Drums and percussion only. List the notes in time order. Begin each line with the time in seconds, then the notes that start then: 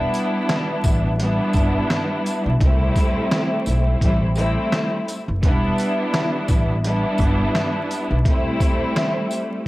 0.14 closed hi-hat, tambourine, shaker
0.49 snare, closed hi-hat
0.84 kick, tambourine, shaker
1.20 closed hi-hat
1.53 kick, tambourine, shaker
1.90 snare, closed hi-hat
2.26 closed hi-hat, tambourine, shaker
2.61 kick, closed hi-hat
2.96 kick, closed hi-hat, tambourine, shaker
3.31 snare, closed hi-hat
3.66 tambourine, shaker
4.01 kick, closed hi-hat
4.35 tambourine, shaker
4.72 snare, closed hi-hat
5.08 closed hi-hat, tambourine, shaker
5.43 kick, closed hi-hat
5.78 closed hi-hat, tambourine, shaker
6.14 snare, closed hi-hat
6.48 kick, tambourine, shaker
6.84 closed hi-hat
7.18 kick, tambourine, shaker
7.55 snare, closed hi-hat
7.91 closed hi-hat, tambourine, shaker
8.25 kick, closed hi-hat
8.60 kick, closed hi-hat, tambourine, shaker
8.96 snare, closed hi-hat
9.31 tambourine, shaker